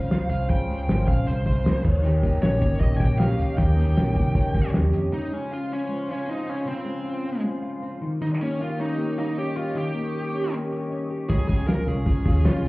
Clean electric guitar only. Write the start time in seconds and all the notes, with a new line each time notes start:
Already playing: C#3 G#3 F4
0.10 C4
0.30 F4
0.49 C#3
0.68 G#3
0.87 A#3
0.98 C4
1.08 G#3
1.26 C4
1.45 D#4
1.55 F4
1.64 A#3
1.74 C4
1.83 D#3
2.03 D#3
2.23 A#3
2.42 C#4
2.61 A#3
2.80 C#4
3.00 G4
3.19 C#4
3.37 G4
3.56 D#3
3.76 A#3
3.95 C#4
4.15 A#3
4.35 C#4
4.54 G4
4.73 C#4
4.92 G4
5.11 C#3
5.31 G#3
5.51 F4
5.89 G#3
6.08 F4
6.27 C4
6.47 F4
6.66 C#3
6.85 G#3
7.05 F4
7.24 C4
7.44 G#3
7.63 F4
7.83 C4
8.02 D#3
8.21 D#3
8.41 A#3
8.60 F4
8.69 G4
8.79 C#4
8.98 A#3
9.18 F4
9.27 G4
9.36 C#4
9.56 G4
9.75 D#3
9.95 A#3
10.14 G4
10.33 C#4
10.53 A#3
10.72 G4
10.92 C#4
11.11 G4
11.31 C#3
11.50 G#3
11.69 F4
11.88 C#4
12.06 G#3
12.26 F4
12.45 C#4
12.64 F4